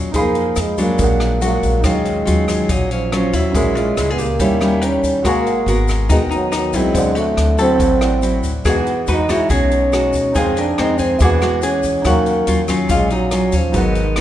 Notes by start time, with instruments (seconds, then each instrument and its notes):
Already playing: upright bass D#2, nylon-string guitar A#2 F#3 C#4 F4, grand piano D#4 C#5 F5
0.12 upright bass F2, nylon-string guitar F3 D#4 G#4, grand piano D#4 G#4, kick, closed hi-hat, shaker
0.16 trombone A#3, grand piano F5 B5
0.35 closed hi-hat, shaker
0.56 upright bass F2, cross-stick, closed hi-hat, shaker
0.61 trombone G#3
0.78 nylon-string guitar F#3 G#3 D4, kick, closed hi-hat, shaker
0.82 trombone A#3
0.98 upright bass A#1, nylon-string guitar A#2, grand piano D4 G#4, kick, closed hi-hat, shaker
1.02 grand piano A#4 F#5
1.20 cross-stick, closed hi-hat, shaker
1.41 nylon-string guitar F#3 G#3 D4, trombone A#3, hollow-body jazz guitar F#4, closed hi-hat, shaker
1.63 upright bass A#1, kick, closed hi-hat, shaker
1.81 upright bass D#2, nylon-string guitar D#3 F#3 C#4, grand piano D#4, hollow-body jazz guitar F4, kick, cross-stick, closed hi-hat, shaker
1.85 trombone G#3, nylon-string guitar F4, grand piano C#5 F5
2.05 closed hi-hat, shaker
2.25 upright bass D#2, nylon-string guitar F#3 C#4 F4, closed hi-hat, shaker
2.48 nylon-string guitar F#3 C#4 F4, kick, cross-stick, closed hi-hat, shaker
2.69 upright bass A#1, nylon-string guitar A#2, trombone F#3, hollow-body jazz guitar D#4, kick, closed hi-hat, shaker
2.91 trombone F3, hollow-body jazz guitar C#4, closed hi-hat, shaker
3.12 trombone F3, nylon-string guitar F#3 C#4 F4, hollow-body jazz guitar C#4, cross-stick, closed hi-hat
3.33 upright bass D#2, trombone F#3, hollow-body jazz guitar E4, kick, closed hi-hat, shaker
3.52 upright bass A#1, nylon-string guitar A#2 G#3 C#4 E4, grand piano C#4 G#4 A#4, kick, closed hi-hat, shaker
3.58 grand piano E5
3.75 trombone G#3, hollow-body jazz guitar F4, closed hi-hat, shaker
3.97 upright bass C#2, nylon-string guitar G#3 C#4 E4, cross-stick, closed hi-hat, shaker
4.11 trombone B3, hollow-body jazz guitar G#4
4.18 trombone A#3, hollow-body jazz guitar G4, kick, closed hi-hat, shaker
4.39 upright bass D#2, nylon-string guitar D#3 G3 C#4 E4, grand piano G4 C#5 E5, kick, closed hi-hat, shaker
4.60 nylon-string guitar G3 C#4 E4, cross-stick, closed hi-hat, shaker
4.82 hollow-body jazz guitar A#4, closed hi-hat
4.86 trombone C#4
5.03 upright bass D#2, kick, closed hi-hat, shaker
5.22 upright bass G#1, nylon-string guitar G#3 F#4 A#4, grand piano F#4 A#4, hollow-body jazz guitar F#4, kick, cross-stick, closed hi-hat, shaker
5.27 trombone A#3, grand piano G#5
5.46 closed hi-hat, shaker
5.66 upright bass G#1, nylon-string guitar B3 F#4 A#4, closed hi-hat, shaker
5.88 kick, cross-stick, closed hi-hat, shaker
6.09 upright bass D#2, nylon-string guitar D#3 B3 F#4 A#4, trombone G#3, hollow-body jazz guitar D#4, kick, closed hi-hat, shaker
6.30 hollow-body jazz guitar D#4, closed hi-hat, shaker
6.35 trombone F#3
6.52 hollow-body jazz guitar D#4, cross-stick, closed hi-hat, shaker
6.56 trombone F#3
6.73 upright bass B1, nylon-string guitar F#3 C4 E4, trombone G#3, hollow-body jazz guitar E4, kick, closed hi-hat, shaker
6.94 upright bass D2, nylon-string guitar D3, grand piano E4 C5 D5, kick, closed hi-hat, shaker
6.99 grand piano F#5
7.15 trombone A3, hollow-body jazz guitar F#4, closed hi-hat, shaker
7.37 upright bass D2, cross-stick, closed hi-hat
7.58 nylon-string guitar F#3 C4 E4, trombone C4, hollow-body jazz guitar A4, kick, closed hi-hat, shaker
7.79 upright bass A1, nylon-string guitar A2, kick, closed hi-hat, shaker
8.01 grand piano E4 C5 D5 F#5, cross-stick, closed hi-hat, shaker
8.22 nylon-string guitar F#3 C4 E4, closed hi-hat, shaker
8.43 upright bass D2, kick, closed hi-hat, shaker
8.65 upright bass E2, nylon-string guitar E3 G#3 D#4 F#4, trombone B3, grand piano G#4 D#5, hollow-body jazz guitar G#4, kick, cross-stick, closed hi-hat, shaker
8.69 grand piano F#5
8.87 closed hi-hat, shaker
9.07 upright bass E2, nylon-string guitar G#3 D#4 F#4, hollow-body jazz guitar B4, closed hi-hat, shaker
9.12 trombone D#4
9.29 nylon-string guitar G#3 D#4 F#4, trombone E4, hollow-body jazz guitar C#5, kick, cross-stick, closed hi-hat, shaker
9.49 upright bass B1, nylon-string guitar B2, trombone C#4, hollow-body jazz guitar G#4, kick, closed hi-hat, shaker
9.71 closed hi-hat, shaker
9.92 nylon-string guitar G#3 D#4 F#4, cross-stick, closed hi-hat, shaker
10.13 upright bass E2, kick, closed hi-hat, shaker
10.32 nylon-string guitar F2 D#3 G#3, upright bass F2, grand piano D#4 G#4, hollow-body jazz guitar G#4, kick, closed hi-hat, shaker
10.36 nylon-string guitar C4, trombone C4, grand piano C5 F5
10.56 trombone D4, hollow-body jazz guitar A#4, closed hi-hat, shaker
10.78 upright bass F2, nylon-string guitar D#3 G#3 C4, trombone D#4, hollow-body jazz guitar C5, cross-stick, closed hi-hat
10.98 trombone C4, hollow-body jazz guitar G#4, kick, closed hi-hat, shaker
11.18 upright bass E2, nylon-string guitar E3 G#3 D4 F#4, grand piano E4 G#4 D6, hollow-body jazz guitar G#4, kick, closed hi-hat, shaker
11.23 trombone B3, grand piano F#5
11.41 nylon-string guitar G#3 F#4, cross-stick, closed hi-hat, shaker
11.62 trombone C#4, hollow-body jazz guitar G#4, closed hi-hat, shaker
11.83 upright bass E2, kick, closed hi-hat, shaker
12.02 upright bass D#2, nylon-string guitar D#3 F#3, grand piano D#4, kick, cross-stick, closed hi-hat, shaker
12.06 trombone A#3, nylon-string guitar C#4, hollow-body jazz guitar F#4, grand piano C#5 F5
12.26 closed hi-hat, shaker
12.47 upright bass D#2, nylon-string guitar F#3 C#4 F4, closed hi-hat, shaker
12.68 nylon-string guitar F#3 C#4 F4, kick, cross-stick, closed hi-hat, shaker
12.89 upright bass A#1, nylon-string guitar A#2, trombone G#3, hollow-body jazz guitar F4, kick, closed hi-hat, shaker
13.10 trombone F#3, hollow-body jazz guitar D#4, closed hi-hat, shaker
13.31 nylon-string guitar F#3 C#4 F4, cross-stick, closed hi-hat, shaker
13.52 upright bass D#2, hollow-body jazz guitar C#4, kick, closed hi-hat, shaker
13.57 trombone F3
13.72 upright bass G#1, nylon-string guitar G#2 F#3 B3 D#4, grand piano D#4 G#4 B4, kick, closed hi-hat, shaker
13.77 trombone D#3, hollow-body jazz guitar B3, grand piano F#5
13.95 closed hi-hat, shaker
14.16 upright bass B1, nylon-string guitar F#3 B3 D#4, cross-stick, closed hi-hat